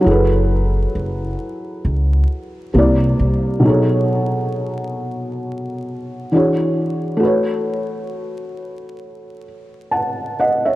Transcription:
0.01 2.68 F#3 medium
0.01 2.69 E4 medium
0.06 0.84 F#1 medium
0.06 2.71 G#4 medium
0.06 2.72 A4 medium
0.11 2.73 B4 medium
0.95 1.34 F#1 medium
1.85 2.24 C#2 medium
2.74 3.13 C2 medium
2.74 3.64 C3 medium
2.74 3.64 A#3 medium
2.74 3.65 E4 medium
2.79 3.66 D5 medium
3.19 3.58 C2 medium
3.60 6.26 B2 medium
3.60 6.27 F#3 medium
3.60 6.28 D#4 medium
3.65 6.29 G#4 medium
3.65 6.30 A4 medium
3.69 6.31 C#5 medium
6.32 7.22 E3 medium
6.32 7.22 D4 medium
6.32 7.18 F#4 medium
6.32 7.24 G#4 medium
6.37 7.24 C#5 medium
7.17 10.74 A3 medium
7.17 10.75 F#4 medium
7.23 10.76 B4 medium
7.23 9.44 C#5 medium
9.91 10.34 F#5 soft
9.91 10.34 A5 medium
10.40 10.65 D#5 medium
10.40 10.65 F#5 medium
10.65 10.76 C#5 medium
10.65 10.76 E5 medium

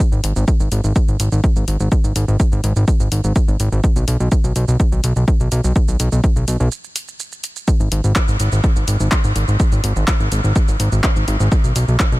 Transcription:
0.12 0.21 G#1 medium
0.12 shaker soft
0.24 0.33 G#1 medium
0.24 open hi-hat loud
0.24 shaker medium
0.36 0.45 G#1 medium
0.36 shaker soft
0.48 kick loud
0.48 shaker medium
0.60 0.69 G#1 medium
0.60 shaker soft
0.72 0.81 G#1 loud
0.72 open hi-hat medium
0.72 shaker medium
0.84 0.93 G#1 medium
0.84 shaker soft
0.96 kick loud
0.96 shaker medium
1.08 1.17 G#1 medium
1.08 shaker soft
1.20 1.29 G#1 medium
1.20 open hi-hat loud
1.20 shaker medium
1.32 1.41 G#1 medium
1.32 shaker soft
1.44 kick loud
1.44 shaker medium
1.56 1.65 G#1 medium
1.56 shaker soft
1.68 1.77 G#1 loud
1.68 open hi-hat medium
1.68 shaker medium
1.80 1.89 G#1 loud
1.80 shaker soft
1.92 kick loud
1.92 shaker medium
2.04 2.13 G#1 medium
2.04 shaker soft
2.16 2.25 G#1 loud
2.16 open hi-hat loud
2.16 shaker medium
2.28 2.37 G#1 medium
2.28 shaker soft
2.40 kick loud
2.40 shaker medium
2.52 2.61 G#1 medium
2.52 shaker soft
2.64 2.73 G#1 loud
2.64 open hi-hat medium
2.64 shaker medium
2.76 2.85 G#1 medium
2.76 shaker soft
2.88 kick loud
2.88 shaker medium
3.00 3.09 G#1 medium
3.00 shaker soft
3.12 3.21 G#1 medium
3.12 open hi-hat loud
3.12 shaker medium
3.24 3.33 G#1 medium
3.24 shaker soft
3.36 kick loud
3.36 shaker medium
3.48 3.57 G#1 medium
3.48 shaker soft
3.60 3.69 G#1 loud
3.60 open hi-hat medium
3.60 shaker medium
3.72 3.81 G#1 loud
3.72 shaker soft
3.84 kick loud
3.84 shaker medium
3.96 4.05 B1 medium
3.96 shaker soft
4.08 4.17 B1 loud
4.08 open hi-hat loud
4.08 shaker medium
4.20 4.29 B1 medium
4.20 shaker soft
4.32 kick loud
4.32 shaker medium
4.44 4.53 B1 medium
4.44 shaker soft
4.56 4.65 B1 loud
4.56 open hi-hat medium
4.56 shaker medium
4.68 4.77 B1 medium
4.68 shaker soft
4.80 kick loud
4.80 shaker medium
4.92 5.01 B1 medium
4.92 shaker soft
5.04 5.13 B1 loud
5.04 open hi-hat loud
5.04 shaker medium
5.16 5.25 B1 medium
5.16 shaker soft
5.28 kick loud
5.28 shaker medium
5.40 5.49 B1 medium
5.40 shaker soft
5.52 5.61 B1 loud
5.52 open hi-hat medium
5.52 shaker medium
5.64 5.73 B1 medium
5.64 shaker soft
5.76 kick loud
5.76 shaker medium
5.88 5.97 B1 medium
5.88 shaker soft
6.00 6.09 B1 loud
6.00 open hi-hat loud
6.00 shaker medium
6.12 6.21 B1 medium
6.12 shaker soft
6.24 kick loud
6.24 shaker medium
6.36 6.45 B1 medium
6.36 shaker soft
6.48 6.57 B1 loud
6.48 open hi-hat medium
6.48 shaker medium
6.60 6.69 B1 medium
6.60 shaker soft
6.72 shaker medium
6.84 shaker soft
6.96 open hi-hat loud
6.96 shaker medium
7.08 shaker soft
7.20 shaker medium
7.32 shaker soft
7.44 open hi-hat medium
7.44 shaker medium
7.56 shaker soft
7.68 kick loud
7.68 shaker medium
7.80 7.89 G#1 medium
7.80 shaker soft
7.92 8.01 G#1 loud
7.92 open hi-hat loud
7.92 shaker medium
8.04 8.13 G#1 medium
8.04 shaker soft
8.16 kick loud
8.16 clap loud
8.16 shaker medium
8.28 8.37 G#1 medium
8.28 shaker soft
8.40 8.49 G#1 loud
8.40 open hi-hat loud
8.40 shaker medium
8.52 8.61 G#1 medium
8.52 shaker soft
8.64 kick loud
8.64 shaker medium
8.76 8.85 G#1 medium
8.76 shaker soft
8.88 8.97 G#1 loud
8.88 open hi-hat loud
8.88 shaker medium
9.00 9.09 G#1 medium
9.00 shaker soft
9.12 kick loud
9.12 clap loud
9.12 shaker medium
9.24 9.33 G#1 medium
9.24 shaker soft
9.36 9.45 G#1 medium
9.36 open hi-hat loud
9.36 shaker medium
9.48 9.57 G#1 medium
9.48 shaker soft
9.60 kick loud
9.60 shaker medium
9.72 9.81 G#1 medium
9.72 shaker soft
9.84 9.93 G#1 loud
9.84 open hi-hat loud
9.84 shaker medium
9.96 10.05 G#1 medium
9.96 shaker soft
10.08 kick loud
10.08 clap loud
10.08 shaker medium
10.20 10.29 G#1 medium
10.20 shaker soft
10.32 10.41 G#1 loud
10.32 open hi-hat loud
10.32 shaker medium
10.44 10.53 G#1 medium
10.44 shaker soft
10.56 kick loud
10.56 shaker medium
10.68 10.77 G#1 medium
10.68 shaker soft
10.80 10.89 G#1 loud
10.80 open hi-hat loud
10.80 shaker medium
10.92 11.01 G#1 medium
10.92 shaker soft
11.04 kick loud
11.04 clap loud
11.04 shaker medium
11.16 11.25 G#1 medium
11.16 shaker soft
11.28 11.37 G#1 loud
11.28 open hi-hat medium
11.28 shaker medium
11.40 11.49 G#1 loud
11.40 shaker soft
11.52 kick loud
11.52 shaker medium
11.64 11.73 B1 medium
11.64 shaker soft
11.76 11.85 B1 loud
11.76 open hi-hat loud
11.76 shaker medium
11.88 11.97 B1 medium
11.88 shaker soft
12.00 kick loud
12.00 clap loud
12.00 shaker medium
12.12 12.20 B1 medium
12.12 shaker soft

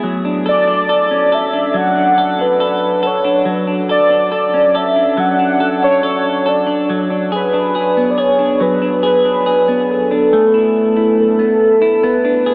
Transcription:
0.00 1.74 F#3 medium
0.00 0.49 B3 medium
0.00 0.13 E4 medium
0.00 0.12 G#4 medium
0.25 0.67 D4 medium
0.46 0.88 A4 medium
0.46 1.36 D5 loud
0.68 1.53 D4 medium
0.89 1.31 A4 medium
1.11 2.83 C#4 medium
1.32 2.17 A4 medium
1.32 1.78 E5 loud
1.53 1.95 D4 medium
1.74 3.45 F#3 medium
1.74 2.42 F#5 loud
1.96 2.38 D4 medium
2.18 2.59 A4 medium
2.39 3.24 D4 medium
2.39 3.08 B4 loud
2.60 3.02 A4 medium
3.03 3.88 A4 medium
3.03 3.48 C#5 medium
3.25 3.67 D4 medium
3.45 5.17 F#3 medium
3.67 4.10 D4 medium
3.89 4.31 A4 medium
3.89 4.78 D5 medium
4.10 4.96 D4 medium
4.32 4.74 A4 medium
4.54 6.25 C#4 medium
4.75 5.59 A4 medium
4.75 5.21 E5 loud
4.96 5.39 D4 medium
5.17 6.89 F#3 medium
5.17 5.83 F#5 loud
5.39 5.82 D4 medium
5.60 6.02 A4 medium
5.83 6.66 D4 medium
5.83 6.50 C#5 loud
6.03 6.45 A4 medium
6.46 6.98 A4 medium
6.46 6.91 D5 medium
6.67 7.10 D4 medium
6.90 8.60 F#3 medium
7.10 7.52 D4 medium
7.32 7.75 G#4 medium
7.32 8.12 B4 loud
7.53 8.38 D4 medium
7.75 8.17 G#4 medium
7.97 9.68 B3 medium
8.11 8.21 D5 medium
8.18 9.03 G#4 medium
8.18 8.63 C#5 loud
8.39 8.81 D4 medium
8.60 10.32 F#3 medium
8.60 9.04 B4 loud
8.82 9.24 D4 medium
9.03 9.46 G#4 medium
9.03 9.83 B4 loud
9.25 10.10 D4 medium
9.46 10.14 G#4 medium
9.68 11.39 B3 medium
9.83 9.92 B4 medium
9.91 11.19 A4 loud
10.11 10.41 D4 medium
10.33 12.13 A3 medium
10.54 10.96 E4 medium
10.96 11.81 E4 medium
11.20 12.06 A4 loud
11.39 12.03 B3 medium
11.82 12.12 E4 medium
12.04 12.54 B3 medium
12.04 12.54 B4 medium
12.25 12.54 D4 medium
12.46 12.54 G#4 medium

